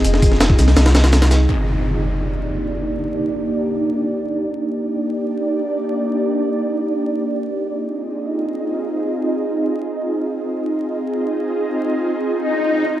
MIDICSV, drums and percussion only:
0, 0, Header, 1, 2, 480
1, 0, Start_track
1, 0, Tempo, 500000
1, 12480, End_track
2, 0, Start_track
2, 0, Title_t, "Drums"
2, 44, Note_on_c, 9, 42, 91
2, 46, Note_on_c, 9, 82, 66
2, 132, Note_on_c, 9, 38, 49
2, 140, Note_off_c, 9, 42, 0
2, 142, Note_off_c, 9, 82, 0
2, 216, Note_on_c, 9, 36, 101
2, 216, Note_on_c, 9, 42, 72
2, 216, Note_on_c, 9, 82, 69
2, 228, Note_off_c, 9, 38, 0
2, 304, Note_on_c, 9, 38, 39
2, 312, Note_off_c, 9, 36, 0
2, 312, Note_off_c, 9, 42, 0
2, 312, Note_off_c, 9, 82, 0
2, 389, Note_off_c, 9, 38, 0
2, 389, Note_on_c, 9, 38, 120
2, 389, Note_on_c, 9, 42, 90
2, 390, Note_off_c, 9, 38, 0
2, 390, Note_on_c, 9, 38, 117
2, 390, Note_on_c, 9, 82, 75
2, 477, Note_on_c, 9, 36, 93
2, 485, Note_off_c, 9, 42, 0
2, 486, Note_off_c, 9, 38, 0
2, 486, Note_off_c, 9, 82, 0
2, 561, Note_on_c, 9, 82, 74
2, 563, Note_on_c, 9, 38, 43
2, 563, Note_on_c, 9, 42, 74
2, 573, Note_off_c, 9, 36, 0
2, 651, Note_off_c, 9, 38, 0
2, 651, Note_on_c, 9, 38, 54
2, 655, Note_off_c, 9, 42, 0
2, 655, Note_on_c, 9, 42, 42
2, 657, Note_off_c, 9, 82, 0
2, 732, Note_on_c, 9, 82, 82
2, 735, Note_off_c, 9, 38, 0
2, 735, Note_off_c, 9, 42, 0
2, 735, Note_on_c, 9, 38, 111
2, 735, Note_on_c, 9, 42, 83
2, 824, Note_off_c, 9, 38, 0
2, 824, Note_off_c, 9, 42, 0
2, 824, Note_on_c, 9, 38, 103
2, 824, Note_on_c, 9, 42, 82
2, 828, Note_off_c, 9, 82, 0
2, 908, Note_on_c, 9, 82, 68
2, 909, Note_off_c, 9, 38, 0
2, 909, Note_off_c, 9, 42, 0
2, 909, Note_on_c, 9, 38, 104
2, 909, Note_on_c, 9, 42, 79
2, 911, Note_off_c, 9, 38, 0
2, 911, Note_on_c, 9, 38, 124
2, 996, Note_off_c, 9, 38, 0
2, 996, Note_off_c, 9, 42, 0
2, 996, Note_on_c, 9, 38, 103
2, 996, Note_on_c, 9, 42, 79
2, 1004, Note_off_c, 9, 82, 0
2, 1079, Note_on_c, 9, 82, 86
2, 1082, Note_off_c, 9, 38, 0
2, 1082, Note_off_c, 9, 42, 0
2, 1082, Note_on_c, 9, 38, 106
2, 1082, Note_on_c, 9, 42, 84
2, 1171, Note_off_c, 9, 38, 0
2, 1171, Note_off_c, 9, 42, 0
2, 1171, Note_on_c, 9, 38, 106
2, 1171, Note_on_c, 9, 42, 79
2, 1175, Note_off_c, 9, 82, 0
2, 1257, Note_off_c, 9, 38, 0
2, 1257, Note_off_c, 9, 42, 0
2, 1257, Note_on_c, 9, 38, 107
2, 1257, Note_on_c, 9, 42, 81
2, 1259, Note_on_c, 9, 82, 90
2, 1353, Note_off_c, 9, 38, 0
2, 1353, Note_off_c, 9, 42, 0
2, 1355, Note_off_c, 9, 82, 0
2, 12480, End_track
0, 0, End_of_file